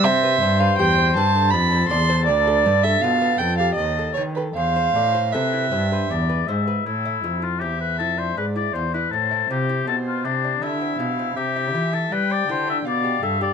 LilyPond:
<<
  \new Staff \with { instrumentName = "Violin" } { \time 3/4 \key a \minor \tempo 4 = 80 e''8. f''16 g''8 a''8 b''8 c'''8 | d''8. e''16 f''8 g''16 f''16 dis''8 cis''16 b'16 | f''4 e''4. r8 | r4 e''4 d''4 |
c''2 e''8 f''8 | e''4 g''4 f''4 | }
  \new Staff \with { instrumentName = "Oboe" } { \time 3/4 \key a \minor c''2 a'4~ | a'2~ a'8 r8 | c''4 b'8. c''16 d''8 e''8 | e'8. f'16 g'16 b'16 a'16 c''16 b'16 d''16 c''16 b'16 |
a'8 g'8 a'16 f'16 d'8 e'4 | g'8. a'16 b'16 d''16 c''16 e''16 d''8 e''16 d''16 | }
  \new Staff \with { instrumentName = "Lute" } { \time 3/4 \key a \minor r16 b'16 c''16 b'16 g'16 c'16 b'16 a'16 r16 c''16 d''16 c''16 | r16 a'16 b'16 a'16 f'16 b16 a'16 g'16 r16 a'16 b'16 a'16 | r16 c''16 d''16 c''16 a'16 e'16 c''16 b'16 r16 b'16 c''16 b'16 | r16 e'16 f'16 e'16 c'8 e'16 d'16 r16 e'16 f'16 e'16 |
r16 e'16 f'16 e'16 c'8 e'16 d'16 e'16 c'16 e'16 c'16 | r16 e'16 f'16 e'8 c'16 e'16 d'16 r16 g'16 a'16 g'16 | }
  \new Staff \with { instrumentName = "Lute" } { \clef bass \time 3/4 \key a \minor c8 g,8 e,8 g,8 f,8 e,8 | d,8 g,8 b,8 f,8 dis,8 dis8 | e,8 a,8 c8 g,8 e,8 gis,8 | a,8 f,8 e,8 f,8 gis,8 e,8 |
a,8 c8 b,8 c8 d8 b,8 | c8 e8 g8 d8 b,8 g,8 | }
  \new Staff \with { instrumentName = "Cello" } { \clef bass \time 3/4 \key a \minor c8 g,8 e,8 g,8 f,8 e,8 | d,8 g,8 b,8 f,8 dis,8 dis8 | e,8 a,8 c8 g,8 e,8 gis,8 | a,8 f,8 e,8 f,8 gis,8 e,8 |
a,8 c8 b,8 c8 d8 b,8 | c8 e8 g8 d8 b,8 g,8 | }
>>